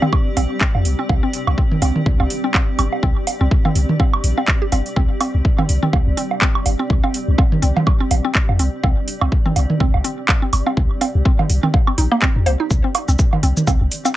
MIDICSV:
0, 0, Header, 1, 5, 480
1, 0, Start_track
1, 0, Tempo, 483871
1, 1084, Time_signature, 4, 2, 24, 8
1, 14050, End_track
2, 0, Start_track
2, 0, Title_t, "Ambient pad"
2, 0, Program_c, 0, 92
2, 0, Note_on_c, 0, 60, 84
2, 0, Note_on_c, 0, 67, 76
2, 0, Note_on_c, 0, 74, 92
2, 14050, Note_off_c, 0, 60, 0
2, 14050, Note_off_c, 0, 67, 0
2, 14050, Note_off_c, 0, 74, 0
2, 14050, End_track
3, 0, Start_track
3, 0, Title_t, "Synth arpeggio sound"
3, 0, Program_c, 1, 84
3, 21, Note_on_c, 1, 60, 75
3, 70, Note_off_c, 1, 60, 0
3, 364, Note_on_c, 1, 60, 75
3, 407, Note_off_c, 1, 60, 0
3, 605, Note_on_c, 1, 60, 80
3, 669, Note_off_c, 1, 60, 0
3, 980, Note_on_c, 1, 60, 79
3, 1013, Note_off_c, 1, 60, 0
3, 1221, Note_on_c, 1, 60, 80
3, 1270, Note_off_c, 1, 60, 0
3, 1564, Note_on_c, 1, 60, 82
3, 1607, Note_off_c, 1, 60, 0
3, 1804, Note_on_c, 1, 60, 74
3, 1869, Note_off_c, 1, 60, 0
3, 2181, Note_on_c, 1, 60, 79
3, 2214, Note_off_c, 1, 60, 0
3, 2421, Note_on_c, 1, 60, 74
3, 2470, Note_off_c, 1, 60, 0
3, 2765, Note_on_c, 1, 60, 75
3, 2807, Note_off_c, 1, 60, 0
3, 3004, Note_on_c, 1, 60, 81
3, 3068, Note_off_c, 1, 60, 0
3, 3380, Note_on_c, 1, 60, 75
3, 3413, Note_off_c, 1, 60, 0
3, 3621, Note_on_c, 1, 60, 76
3, 3670, Note_off_c, 1, 60, 0
3, 3964, Note_on_c, 1, 60, 84
3, 4007, Note_off_c, 1, 60, 0
3, 4340, Note_on_c, 1, 60, 75
3, 4373, Note_off_c, 1, 60, 0
3, 4580, Note_on_c, 1, 67, 77
3, 4613, Note_off_c, 1, 67, 0
3, 4684, Note_on_c, 1, 60, 75
3, 4710, Note_off_c, 1, 60, 0
3, 4923, Note_on_c, 1, 60, 81
3, 4966, Note_off_c, 1, 60, 0
3, 5164, Note_on_c, 1, 60, 79
3, 5229, Note_off_c, 1, 60, 0
3, 5540, Note_on_c, 1, 60, 76
3, 5573, Note_off_c, 1, 60, 0
3, 5779, Note_on_c, 1, 60, 76
3, 5829, Note_off_c, 1, 60, 0
3, 6123, Note_on_c, 1, 60, 74
3, 6167, Note_off_c, 1, 60, 0
3, 6363, Note_on_c, 1, 60, 80
3, 6428, Note_off_c, 1, 60, 0
3, 6739, Note_on_c, 1, 60, 76
3, 6773, Note_off_c, 1, 60, 0
3, 6979, Note_on_c, 1, 60, 81
3, 7029, Note_off_c, 1, 60, 0
3, 7322, Note_on_c, 1, 60, 79
3, 7366, Note_off_c, 1, 60, 0
3, 7562, Note_on_c, 1, 60, 75
3, 7627, Note_off_c, 1, 60, 0
3, 7940, Note_on_c, 1, 60, 80
3, 7973, Note_off_c, 1, 60, 0
3, 8180, Note_on_c, 1, 60, 80
3, 8229, Note_off_c, 1, 60, 0
3, 8525, Note_on_c, 1, 60, 75
3, 8567, Note_off_c, 1, 60, 0
3, 8764, Note_on_c, 1, 60, 81
3, 8828, Note_off_c, 1, 60, 0
3, 9140, Note_on_c, 1, 60, 73
3, 9173, Note_off_c, 1, 60, 0
3, 9380, Note_on_c, 1, 60, 76
3, 9429, Note_off_c, 1, 60, 0
3, 9723, Note_on_c, 1, 60, 82
3, 9767, Note_off_c, 1, 60, 0
3, 9963, Note_on_c, 1, 60, 74
3, 10028, Note_off_c, 1, 60, 0
3, 10339, Note_on_c, 1, 60, 75
3, 10373, Note_off_c, 1, 60, 0
3, 10579, Note_on_c, 1, 60, 75
3, 10629, Note_off_c, 1, 60, 0
3, 10923, Note_on_c, 1, 60, 81
3, 10966, Note_off_c, 1, 60, 0
3, 11162, Note_on_c, 1, 60, 85
3, 11228, Note_off_c, 1, 60, 0
3, 11538, Note_on_c, 1, 60, 81
3, 11572, Note_off_c, 1, 60, 0
3, 11779, Note_on_c, 1, 60, 78
3, 11829, Note_off_c, 1, 60, 0
3, 11883, Note_on_c, 1, 63, 74
3, 11948, Note_off_c, 1, 63, 0
3, 12018, Note_on_c, 1, 58, 99
3, 12052, Note_off_c, 1, 58, 0
3, 12122, Note_on_c, 1, 60, 102
3, 12166, Note_off_c, 1, 60, 0
3, 12362, Note_on_c, 1, 72, 103
3, 12406, Note_off_c, 1, 72, 0
3, 12499, Note_on_c, 1, 63, 76
3, 12532, Note_off_c, 1, 63, 0
3, 12738, Note_on_c, 1, 60, 75
3, 12772, Note_off_c, 1, 60, 0
3, 12978, Note_on_c, 1, 60, 74
3, 12999, Note_off_c, 1, 60, 0
3, 13323, Note_on_c, 1, 60, 75
3, 13367, Note_off_c, 1, 60, 0
3, 13563, Note_on_c, 1, 60, 80
3, 13589, Note_off_c, 1, 60, 0
3, 13939, Note_on_c, 1, 60, 81
3, 13973, Note_off_c, 1, 60, 0
3, 14050, End_track
4, 0, Start_track
4, 0, Title_t, "Sub bass"
4, 0, Program_c, 2, 38
4, 365, Note_on_c, 2, 34, 80
4, 459, Note_off_c, 2, 34, 0
4, 741, Note_on_c, 2, 41, 79
4, 845, Note_on_c, 2, 36, 81
4, 860, Note_off_c, 2, 41, 0
4, 940, Note_off_c, 2, 36, 0
4, 1085, Note_on_c, 2, 36, 95
4, 1179, Note_off_c, 2, 36, 0
4, 1460, Note_on_c, 2, 36, 79
4, 1533, Note_off_c, 2, 36, 0
4, 1804, Note_on_c, 2, 36, 95
4, 1899, Note_off_c, 2, 36, 0
4, 2044, Note_on_c, 2, 36, 96
4, 2139, Note_off_c, 2, 36, 0
4, 2180, Note_on_c, 2, 36, 99
4, 2252, Note_off_c, 2, 36, 0
4, 2765, Note_on_c, 2, 31, 87
4, 2859, Note_off_c, 2, 31, 0
4, 3005, Note_on_c, 2, 36, 95
4, 3099, Note_off_c, 2, 36, 0
4, 3380, Note_on_c, 2, 36, 80
4, 3452, Note_off_c, 2, 36, 0
4, 3723, Note_on_c, 2, 36, 89
4, 3818, Note_off_c, 2, 36, 0
4, 4203, Note_on_c, 2, 34, 80
4, 4298, Note_off_c, 2, 34, 0
4, 4683, Note_on_c, 2, 31, 95
4, 4779, Note_off_c, 2, 31, 0
4, 4924, Note_on_c, 2, 36, 94
4, 5019, Note_off_c, 2, 36, 0
4, 5300, Note_on_c, 2, 36, 80
4, 5372, Note_off_c, 2, 36, 0
4, 5644, Note_on_c, 2, 36, 92
4, 5739, Note_off_c, 2, 36, 0
4, 5885, Note_on_c, 2, 36, 96
4, 5979, Note_off_c, 2, 36, 0
4, 6020, Note_on_c, 2, 36, 98
4, 6093, Note_off_c, 2, 36, 0
4, 6604, Note_on_c, 2, 31, 87
4, 6699, Note_off_c, 2, 31, 0
4, 6845, Note_on_c, 2, 36, 103
4, 6939, Note_off_c, 2, 36, 0
4, 7221, Note_on_c, 2, 36, 84
4, 7293, Note_off_c, 2, 36, 0
4, 7564, Note_on_c, 2, 36, 94
4, 7659, Note_off_c, 2, 36, 0
4, 8043, Note_on_c, 2, 34, 77
4, 8139, Note_off_c, 2, 34, 0
4, 8420, Note_on_c, 2, 41, 81
4, 8524, Note_on_c, 2, 36, 83
4, 8539, Note_off_c, 2, 41, 0
4, 8619, Note_off_c, 2, 36, 0
4, 8765, Note_on_c, 2, 36, 95
4, 8859, Note_off_c, 2, 36, 0
4, 9140, Note_on_c, 2, 36, 83
4, 9213, Note_off_c, 2, 36, 0
4, 9485, Note_on_c, 2, 36, 93
4, 9579, Note_off_c, 2, 36, 0
4, 9725, Note_on_c, 2, 36, 94
4, 9819, Note_off_c, 2, 36, 0
4, 9861, Note_on_c, 2, 36, 94
4, 9933, Note_off_c, 2, 36, 0
4, 10444, Note_on_c, 2, 31, 85
4, 10539, Note_off_c, 2, 31, 0
4, 10684, Note_on_c, 2, 36, 100
4, 10779, Note_off_c, 2, 36, 0
4, 11060, Note_on_c, 2, 36, 80
4, 11132, Note_off_c, 2, 36, 0
4, 11404, Note_on_c, 2, 36, 89
4, 11499, Note_off_c, 2, 36, 0
4, 11884, Note_on_c, 2, 34, 77
4, 11979, Note_off_c, 2, 34, 0
4, 12260, Note_on_c, 2, 41, 79
4, 12363, Note_on_c, 2, 36, 85
4, 12378, Note_off_c, 2, 41, 0
4, 12459, Note_off_c, 2, 36, 0
4, 12604, Note_on_c, 2, 36, 94
4, 12699, Note_off_c, 2, 36, 0
4, 12979, Note_on_c, 2, 36, 81
4, 13052, Note_off_c, 2, 36, 0
4, 13323, Note_on_c, 2, 36, 92
4, 13418, Note_off_c, 2, 36, 0
4, 13564, Note_on_c, 2, 36, 98
4, 13659, Note_off_c, 2, 36, 0
4, 13700, Note_on_c, 2, 36, 97
4, 13772, Note_off_c, 2, 36, 0
4, 14050, End_track
5, 0, Start_track
5, 0, Title_t, "Drums"
5, 22, Note_on_c, 9, 47, 74
5, 22, Note_on_c, 9, 77, 43
5, 121, Note_off_c, 9, 47, 0
5, 121, Note_off_c, 9, 77, 0
5, 125, Note_on_c, 9, 36, 111
5, 125, Note_on_c, 9, 76, 65
5, 224, Note_off_c, 9, 36, 0
5, 224, Note_off_c, 9, 76, 0
5, 365, Note_on_c, 9, 46, 88
5, 366, Note_on_c, 9, 77, 43
5, 464, Note_off_c, 9, 46, 0
5, 465, Note_off_c, 9, 77, 0
5, 604, Note_on_c, 9, 39, 99
5, 605, Note_on_c, 9, 36, 107
5, 704, Note_off_c, 9, 36, 0
5, 704, Note_off_c, 9, 39, 0
5, 741, Note_on_c, 9, 77, 42
5, 840, Note_off_c, 9, 77, 0
5, 844, Note_on_c, 9, 46, 86
5, 943, Note_off_c, 9, 46, 0
5, 1085, Note_on_c, 9, 36, 110
5, 1085, Note_on_c, 9, 77, 41
5, 1184, Note_off_c, 9, 36, 0
5, 1184, Note_off_c, 9, 77, 0
5, 1324, Note_on_c, 9, 46, 90
5, 1423, Note_off_c, 9, 46, 0
5, 1462, Note_on_c, 9, 76, 66
5, 1462, Note_on_c, 9, 77, 41
5, 1561, Note_off_c, 9, 76, 0
5, 1561, Note_off_c, 9, 77, 0
5, 1565, Note_on_c, 9, 36, 110
5, 1664, Note_off_c, 9, 36, 0
5, 1701, Note_on_c, 9, 47, 79
5, 1801, Note_off_c, 9, 47, 0
5, 1804, Note_on_c, 9, 46, 90
5, 1805, Note_on_c, 9, 77, 43
5, 1903, Note_off_c, 9, 46, 0
5, 1905, Note_off_c, 9, 77, 0
5, 1940, Note_on_c, 9, 47, 76
5, 2040, Note_off_c, 9, 47, 0
5, 2045, Note_on_c, 9, 36, 119
5, 2144, Note_off_c, 9, 36, 0
5, 2182, Note_on_c, 9, 77, 42
5, 2281, Note_off_c, 9, 77, 0
5, 2284, Note_on_c, 9, 46, 88
5, 2383, Note_off_c, 9, 46, 0
5, 2524, Note_on_c, 9, 39, 97
5, 2525, Note_on_c, 9, 36, 108
5, 2526, Note_on_c, 9, 77, 42
5, 2624, Note_off_c, 9, 36, 0
5, 2624, Note_off_c, 9, 39, 0
5, 2625, Note_off_c, 9, 77, 0
5, 2764, Note_on_c, 9, 46, 84
5, 2765, Note_on_c, 9, 76, 67
5, 2863, Note_off_c, 9, 46, 0
5, 2864, Note_off_c, 9, 76, 0
5, 2902, Note_on_c, 9, 77, 45
5, 3001, Note_off_c, 9, 77, 0
5, 3005, Note_on_c, 9, 36, 109
5, 3104, Note_off_c, 9, 36, 0
5, 3244, Note_on_c, 9, 46, 90
5, 3245, Note_on_c, 9, 77, 43
5, 3343, Note_off_c, 9, 46, 0
5, 3344, Note_off_c, 9, 77, 0
5, 3485, Note_on_c, 9, 36, 114
5, 3584, Note_off_c, 9, 36, 0
5, 3621, Note_on_c, 9, 47, 80
5, 3621, Note_on_c, 9, 77, 42
5, 3720, Note_off_c, 9, 47, 0
5, 3720, Note_off_c, 9, 77, 0
5, 3724, Note_on_c, 9, 46, 87
5, 3824, Note_off_c, 9, 46, 0
5, 3860, Note_on_c, 9, 47, 80
5, 3960, Note_off_c, 9, 47, 0
5, 3964, Note_on_c, 9, 36, 110
5, 3965, Note_on_c, 9, 77, 44
5, 4064, Note_off_c, 9, 36, 0
5, 4065, Note_off_c, 9, 77, 0
5, 4102, Note_on_c, 9, 76, 71
5, 4201, Note_off_c, 9, 76, 0
5, 4204, Note_on_c, 9, 46, 90
5, 4303, Note_off_c, 9, 46, 0
5, 4342, Note_on_c, 9, 77, 42
5, 4441, Note_off_c, 9, 77, 0
5, 4443, Note_on_c, 9, 39, 104
5, 4444, Note_on_c, 9, 36, 108
5, 4542, Note_off_c, 9, 39, 0
5, 4544, Note_off_c, 9, 36, 0
5, 4683, Note_on_c, 9, 46, 85
5, 4685, Note_on_c, 9, 77, 41
5, 4782, Note_off_c, 9, 46, 0
5, 4784, Note_off_c, 9, 77, 0
5, 4819, Note_on_c, 9, 46, 35
5, 4919, Note_off_c, 9, 46, 0
5, 4924, Note_on_c, 9, 36, 116
5, 5024, Note_off_c, 9, 36, 0
5, 5164, Note_on_c, 9, 46, 93
5, 5164, Note_on_c, 9, 76, 70
5, 5164, Note_on_c, 9, 77, 42
5, 5263, Note_off_c, 9, 46, 0
5, 5264, Note_off_c, 9, 76, 0
5, 5264, Note_off_c, 9, 77, 0
5, 5405, Note_on_c, 9, 36, 119
5, 5504, Note_off_c, 9, 36, 0
5, 5541, Note_on_c, 9, 47, 80
5, 5541, Note_on_c, 9, 77, 46
5, 5640, Note_off_c, 9, 47, 0
5, 5640, Note_off_c, 9, 77, 0
5, 5643, Note_on_c, 9, 46, 90
5, 5743, Note_off_c, 9, 46, 0
5, 5780, Note_on_c, 9, 47, 77
5, 5879, Note_off_c, 9, 47, 0
5, 5884, Note_on_c, 9, 77, 44
5, 5885, Note_on_c, 9, 36, 114
5, 5983, Note_off_c, 9, 77, 0
5, 5984, Note_off_c, 9, 36, 0
5, 6124, Note_on_c, 9, 46, 92
5, 6223, Note_off_c, 9, 46, 0
5, 6261, Note_on_c, 9, 77, 43
5, 6360, Note_off_c, 9, 77, 0
5, 6364, Note_on_c, 9, 39, 105
5, 6365, Note_on_c, 9, 36, 119
5, 6463, Note_off_c, 9, 39, 0
5, 6464, Note_off_c, 9, 36, 0
5, 6500, Note_on_c, 9, 76, 70
5, 6599, Note_off_c, 9, 76, 0
5, 6604, Note_on_c, 9, 46, 91
5, 6604, Note_on_c, 9, 77, 42
5, 6703, Note_off_c, 9, 46, 0
5, 6703, Note_off_c, 9, 77, 0
5, 6845, Note_on_c, 9, 36, 115
5, 6944, Note_off_c, 9, 36, 0
5, 6981, Note_on_c, 9, 77, 44
5, 7080, Note_off_c, 9, 77, 0
5, 7084, Note_on_c, 9, 46, 95
5, 7183, Note_off_c, 9, 46, 0
5, 7325, Note_on_c, 9, 36, 124
5, 7326, Note_on_c, 9, 77, 44
5, 7424, Note_off_c, 9, 36, 0
5, 7425, Note_off_c, 9, 77, 0
5, 7461, Note_on_c, 9, 47, 84
5, 7560, Note_off_c, 9, 47, 0
5, 7564, Note_on_c, 9, 46, 97
5, 7663, Note_off_c, 9, 46, 0
5, 7703, Note_on_c, 9, 47, 86
5, 7703, Note_on_c, 9, 77, 46
5, 7802, Note_off_c, 9, 47, 0
5, 7802, Note_off_c, 9, 77, 0
5, 7805, Note_on_c, 9, 36, 125
5, 7805, Note_on_c, 9, 76, 66
5, 7904, Note_off_c, 9, 36, 0
5, 7904, Note_off_c, 9, 76, 0
5, 8043, Note_on_c, 9, 46, 100
5, 8046, Note_on_c, 9, 77, 48
5, 8143, Note_off_c, 9, 46, 0
5, 8145, Note_off_c, 9, 77, 0
5, 8284, Note_on_c, 9, 39, 103
5, 8285, Note_on_c, 9, 36, 119
5, 8383, Note_off_c, 9, 39, 0
5, 8384, Note_off_c, 9, 36, 0
5, 8422, Note_on_c, 9, 77, 46
5, 8521, Note_off_c, 9, 77, 0
5, 8524, Note_on_c, 9, 46, 90
5, 8623, Note_off_c, 9, 46, 0
5, 8765, Note_on_c, 9, 36, 120
5, 8765, Note_on_c, 9, 77, 47
5, 8864, Note_off_c, 9, 36, 0
5, 8864, Note_off_c, 9, 77, 0
5, 9004, Note_on_c, 9, 46, 98
5, 9103, Note_off_c, 9, 46, 0
5, 9141, Note_on_c, 9, 76, 63
5, 9141, Note_on_c, 9, 77, 46
5, 9240, Note_off_c, 9, 76, 0
5, 9240, Note_off_c, 9, 77, 0
5, 9245, Note_on_c, 9, 36, 123
5, 9344, Note_off_c, 9, 36, 0
5, 9380, Note_on_c, 9, 47, 85
5, 9479, Note_off_c, 9, 47, 0
5, 9484, Note_on_c, 9, 77, 46
5, 9485, Note_on_c, 9, 46, 93
5, 9583, Note_off_c, 9, 77, 0
5, 9584, Note_off_c, 9, 46, 0
5, 9620, Note_on_c, 9, 47, 79
5, 9719, Note_off_c, 9, 47, 0
5, 9725, Note_on_c, 9, 36, 121
5, 9824, Note_off_c, 9, 36, 0
5, 9861, Note_on_c, 9, 77, 44
5, 9960, Note_off_c, 9, 77, 0
5, 9965, Note_on_c, 9, 46, 99
5, 10064, Note_off_c, 9, 46, 0
5, 10203, Note_on_c, 9, 39, 105
5, 10205, Note_on_c, 9, 36, 119
5, 10206, Note_on_c, 9, 77, 47
5, 10303, Note_off_c, 9, 39, 0
5, 10304, Note_off_c, 9, 36, 0
5, 10305, Note_off_c, 9, 77, 0
5, 10443, Note_on_c, 9, 46, 93
5, 10446, Note_on_c, 9, 76, 64
5, 10543, Note_off_c, 9, 46, 0
5, 10546, Note_off_c, 9, 76, 0
5, 10581, Note_on_c, 9, 77, 50
5, 10681, Note_off_c, 9, 77, 0
5, 10684, Note_on_c, 9, 36, 115
5, 10783, Note_off_c, 9, 36, 0
5, 10924, Note_on_c, 9, 46, 95
5, 10925, Note_on_c, 9, 77, 45
5, 11023, Note_off_c, 9, 46, 0
5, 11025, Note_off_c, 9, 77, 0
5, 11164, Note_on_c, 9, 36, 124
5, 11263, Note_off_c, 9, 36, 0
5, 11300, Note_on_c, 9, 47, 79
5, 11300, Note_on_c, 9, 77, 48
5, 11400, Note_off_c, 9, 47, 0
5, 11400, Note_off_c, 9, 77, 0
5, 11404, Note_on_c, 9, 46, 95
5, 11503, Note_off_c, 9, 46, 0
5, 11540, Note_on_c, 9, 47, 77
5, 11639, Note_off_c, 9, 47, 0
5, 11644, Note_on_c, 9, 36, 124
5, 11644, Note_on_c, 9, 77, 44
5, 11743, Note_off_c, 9, 36, 0
5, 11744, Note_off_c, 9, 77, 0
5, 11778, Note_on_c, 9, 76, 59
5, 11877, Note_off_c, 9, 76, 0
5, 11883, Note_on_c, 9, 46, 97
5, 11982, Note_off_c, 9, 46, 0
5, 12020, Note_on_c, 9, 77, 45
5, 12119, Note_off_c, 9, 77, 0
5, 12123, Note_on_c, 9, 39, 102
5, 12124, Note_on_c, 9, 36, 118
5, 12222, Note_off_c, 9, 39, 0
5, 12223, Note_off_c, 9, 36, 0
5, 12363, Note_on_c, 9, 46, 93
5, 12365, Note_on_c, 9, 77, 44
5, 12462, Note_off_c, 9, 46, 0
5, 12464, Note_off_c, 9, 77, 0
5, 12603, Note_on_c, 9, 69, 48
5, 12604, Note_on_c, 9, 36, 115
5, 12702, Note_off_c, 9, 69, 0
5, 12703, Note_off_c, 9, 36, 0
5, 12843, Note_on_c, 9, 46, 95
5, 12845, Note_on_c, 9, 76, 61
5, 12845, Note_on_c, 9, 77, 43
5, 12942, Note_off_c, 9, 46, 0
5, 12945, Note_off_c, 9, 76, 0
5, 12945, Note_off_c, 9, 77, 0
5, 12979, Note_on_c, 9, 69, 41
5, 13078, Note_off_c, 9, 69, 0
5, 13083, Note_on_c, 9, 69, 51
5, 13084, Note_on_c, 9, 36, 118
5, 13182, Note_off_c, 9, 69, 0
5, 13183, Note_off_c, 9, 36, 0
5, 13222, Note_on_c, 9, 47, 74
5, 13222, Note_on_c, 9, 77, 44
5, 13321, Note_off_c, 9, 47, 0
5, 13321, Note_off_c, 9, 77, 0
5, 13323, Note_on_c, 9, 46, 92
5, 13422, Note_off_c, 9, 46, 0
5, 13460, Note_on_c, 9, 69, 41
5, 13461, Note_on_c, 9, 47, 74
5, 13559, Note_off_c, 9, 69, 0
5, 13560, Note_off_c, 9, 47, 0
5, 13564, Note_on_c, 9, 36, 121
5, 13564, Note_on_c, 9, 69, 49
5, 13565, Note_on_c, 9, 77, 45
5, 13663, Note_off_c, 9, 36, 0
5, 13663, Note_off_c, 9, 69, 0
5, 13664, Note_off_c, 9, 77, 0
5, 13804, Note_on_c, 9, 46, 92
5, 13804, Note_on_c, 9, 69, 29
5, 13903, Note_off_c, 9, 46, 0
5, 13903, Note_off_c, 9, 69, 0
5, 13940, Note_on_c, 9, 69, 47
5, 13941, Note_on_c, 9, 77, 43
5, 14039, Note_off_c, 9, 69, 0
5, 14040, Note_off_c, 9, 77, 0
5, 14050, End_track
0, 0, End_of_file